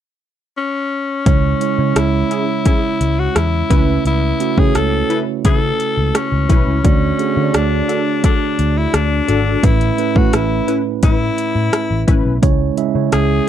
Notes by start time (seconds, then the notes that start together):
0.57 C#4
1.26 C#2 C#3 G#3 C#4 E4 C#5, kick, closed hi-hat
1.61 G#3 C#4 E4 C#5, closed hi-hat
1.78 C#3 G#3 C#4 E4 C#5
1.96 C#2 E4, cross-stick, closed hi-hat
2.31 C#4 E4 G#4, closed hi-hat
2.65 C#4 E4 G#4, kick, closed hi-hat
3.01 C#2, closed hi-hat
3.19 F#4
3.36 E2 E4, cross-stick, closed hi-hat
3.70 C#2 C#3 A3 C#4 E4 B4, kick, closed hi-hat
4.05 C#2 E4, closed hi-hat
4.40 A3 C#4 E4 F#4, closed hi-hat
4.57 C#3 A3 C#4 E4 G#4 C#5, kick
4.75 C#2 A4, cross-stick, closed hi-hat
5.10 C#4 E4 B4, closed hi-hat
5.45 C#3 C#4 E4 A4 B4, kick, closed hi-hat
5.80 closed hi-hat
5.97 C#2
6.15 C#4, cross-stick, closed hi-hat
6.32 C#2
6.49 B1 C#4 E4 B4, kick, closed hi-hat
6.67 C#2
6.84 D2 D3 A3 C#4 D4 F#4 D5, kick, closed hi-hat
7.19 A3 D4 F#4 G#4, closed hi-hat
7.36 D3 A3 D4 F#4 C#5
7.44 D5
7.54 D2 D4, cross-stick, closed hi-hat
7.89 D4 F#4 A4, closed hi-hat
8.24 D4 F#4 A4, kick, closed hi-hat
8.59 D2, closed hi-hat
8.77 E4
8.94 D2 D4, cross-stick, closed hi-hat
9.28 G#1 D4 F#4 A4, closed hi-hat
9.63 A1 A2 A3 C#4 E4 B4, kick, closed hi-hat
9.81 closed hi-hat
9.98 A3 C#4 E4 B4, closed hi-hat
10.15 A2 A3 C#4 E4 F#4 B4, kick
10.33 A1 E4, cross-stick, closed hi-hat
10.68 C#4 E4 B4, closed hi-hat
11.03 A2 C#4 E4 B4, kick, closed hi-hat
11.38 closed hi-hat
11.55 A2
11.73 cross-stick, closed hi-hat
11.91 A1
12.07 A1 C#4 E4 B4, kick, closed hi-hat
12.25 B1
12.42 C#2 C#3 G#3 C#4 E4 C#5, kick, closed hi-hat
12.77 G#3 C#4 E4 E5, closed hi-hat
12.94 C#3 G#3 C#4 E4 C#5
13.12 C#2 G#4, cross-stick, closed hi-hat